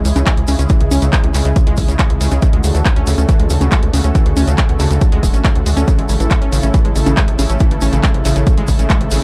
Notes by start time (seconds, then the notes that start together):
0.05 C#2 C#3 G#3 E4 G#4, open hi-hat, shaker
0.16 C#2 C#3, closed hi-hat, high conga, shaker
0.27 C#3 G#3 E4 G#4, kick, clap, closed hi-hat, shaker
0.37 C#2 C3 C#3 G#3 E4 G#4, closed hi-hat
0.47 C#2 C#3, open hi-hat, high conga, shaker
0.59 C#2 C#3 G#3 C#4 E4 G#4, closed hi-hat, shaker
0.69 C#3 E3 G#3 E4 G#4, kick, closed hi-hat, shaker
0.80 C#2 C#3, closed hi-hat
0.91 C#2 C#3 G#3 C#4 E4 G#4, open hi-hat, high conga, shaker
1.02 C#2 C#3, closed hi-hat, shaker
1.13 C#3 G#3 E4 G#4, kick, clap, closed hi-hat, shaker
1.24 C#2 C3 C#3 G#3 E4 G#4, closed hi-hat
1.34 C#2 C#3, clap, open hi-hat, shaker
1.45 C#2 C#3 G#3 E4 G#4, closed hi-hat, shaker
1.56 C#2 C#3 G#3 E4 G#4, kick, closed hi-hat, shaker
1.67 C#2 G#3, closed hi-hat
1.77 C#2 C#3 G#3 E4 G#4, kick, open hi-hat, shaker
1.88 C#2 C#3, closed hi-hat, shaker
1.99 C#3 G#3 E4 G#4, kick, clap, closed hi-hat, shaker
2.10 C#2 C3 C#3 G#3 E4 G#4, closed hi-hat
2.21 C#2 C#3, open hi-hat, shaker
2.31 C#2 C#3 G#3 E4 G#4, closed hi-hat, high conga, shaker
2.42 C#3 D3 A3 F#4 A4, kick, closed hi-hat, shaker
2.53 D2 G#3, closed hi-hat
2.64 D2 C#3 D3 A3 F#4 A4, open hi-hat, shaker
2.75 D2 E3, closed hi-hat, shaker
2.85 G#2 D3 A3 F#4 A4, kick, clap, closed hi-hat, shaker
2.96 D2 D3 A3 C#4 F#4 A4, closed hi-hat
3.07 D2 C#3, open hi-hat, shaker
3.18 D2 D3 A3 C#4 F#4 A4, closed hi-hat, shaker
3.29 D3 E3 A3 F#4 A4, kick, closed hi-hat, shaker
3.40 D2 G#3, closed hi-hat
3.50 D2 C#3 D3 A3 F#4 A4, open hi-hat, shaker
3.61 D2 C#3, closed hi-hat, high conga, shaker
3.71 D3 G#3 A3 F#4 A4, kick, clap, closed hi-hat, shaker
3.83 D2 B2 D3 A3 F#4 A4, closed hi-hat
3.93 D2 C#3, open hi-hat, high conga, shaker
4.04 D2 D3 A3 C#4 F#4 A4, shaker
4.15 D3 E3 A3 F#4 A4, kick, closed hi-hat, shaker
4.26 D2 C#3, closed hi-hat
4.37 D2 D3 A3 C#4 F#4 A4, open hi-hat, high conga, shaker
4.47 D2 C#3, closed hi-hat, shaker
4.58 D3 G#3 A3 F#4 A4, kick, clap, closed hi-hat, shaker
4.69 D2 B2 D3 A3 F#4 A4, closed hi-hat
4.80 D2 C#3, clap, open hi-hat, shaker
4.91 D2 C#3 D3 A3 F#4 A4, closed hi-hat, shaker
5.01 C#2 D3 A3 F#4 A4, kick, closed hi-hat, shaker
5.12 D2 G#3, closed hi-hat
5.23 D1 D3 G#3 A3 F#4 A4, kick, open hi-hat, shaker
5.34 A1 C#4, closed hi-hat, shaker
5.44 G#2 D3 A3 F#4 A4, kick, clap, closed hi-hat, shaker
5.55 C#2 D2 D3 A3 F#4 A4, closed hi-hat
5.66 D2 G#3, open hi-hat, shaker
5.77 D2 D3 A3 C#4 F#4 A4, closed hi-hat, high conga, shaker
5.88 C#3 A3 E4 A4, kick, closed hi-hat, shaker
5.98 A1 G#3, closed hi-hat
6.09 A1 C#3 A3 E4 A4, open hi-hat, shaker
6.20 A1 E3, closed hi-hat, shaker
6.31 G#2 C#3 A3 E4 A4, kick, clap, closed hi-hat, shaker
6.42 A1 C#3 A3 C#4 E4 A4, closed hi-hat
6.52 A1 C#3, open hi-hat, shaker
6.62 A1 C#3 A3 C#4 E4 A4, closed hi-hat, shaker
6.74 C#3 E3 A3 E4 A4, kick, closed hi-hat, shaker
6.85 A1 G#3, closed hi-hat
6.96 A1 C#3 A3 E4 A4, open hi-hat, shaker
7.06 A1 C#3, closed hi-hat, high conga, shaker
7.17 C#3 G#3 A3 E4 A4, kick, clap, closed hi-hat, shaker
7.28 A1 C3 C#3 A3 E4 A4, closed hi-hat
7.39 A1 C#3, open hi-hat, high conga, shaker
7.49 A1 C#3 A3 C#4 E4 A4, closed hi-hat, shaker
7.59 C#3 E3 A3 E4 A4, kick, closed hi-hat, shaker
7.71 A1 C#3, closed hi-hat
7.81 A1 C#3 A3 C#4 E4 A4, open hi-hat, high conga, shaker
7.93 A1 C#3, closed hi-hat, shaker
8.04 C#3 G#3 A3 E4 A4, kick, clap, closed hi-hat, shaker
8.14 A1 C3 C#3 A3 E4 A4, closed hi-hat
8.25 A1 C#3, clap, open hi-hat, shaker
8.36 A1 C#3 A3 E4 A4, closed hi-hat, shaker
8.47 C#2 C#3 A3 E4 A4, kick, closed hi-hat, shaker
8.58 A1 G#3, closed hi-hat
8.67 A1 C#2 C#3 A3 E4 A4, kick, open hi-hat, shaker
8.79 A1 C#3, closed hi-hat, shaker
8.90 C#3 G#3 A3 E4 A4, kick, clap, closed hi-hat, shaker
9.01 A1 C3 C#3 A3 E4 A4, closed hi-hat
9.11 A1 C#3, open hi-hat, shaker